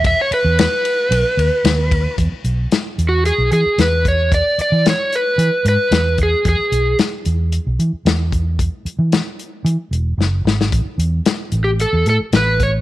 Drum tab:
RD |x-x-x-x-x-x-x-x-|----------------|----------------|----------------|
HH |----------------|x-x-x-x-x-x-x-x-|x-x-x-x-x-x-x-x-|x-x-x-x-x-x-x-x-|
SD |----o-------o---|----o-------o---|----o-------o---|----o-------o---|
BD |o-------------o-|o-------------o-|o-------------o-|o-------------o-|

RD |----------------|----------------|
HH |x-x-x-x-x-x-----|x-x-x-x-x-x-x-x-|
SD |----o-------o-oo|----o-------o---|
BD |o---------------|o-------------o-|